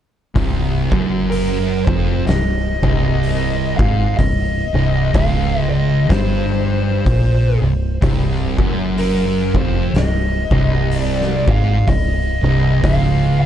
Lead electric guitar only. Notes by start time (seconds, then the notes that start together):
1.30 A#4
1.85 C5
2.26 D#5
3.77 F5
4.17 D#5
5.15 F5
5.69 D#5
6.09 C5
8.99 A#4
9.57 C5
9.96 D#5
10.97 D5
11.51 F5
11.88 D#5
12.85 F5
13.41 D#5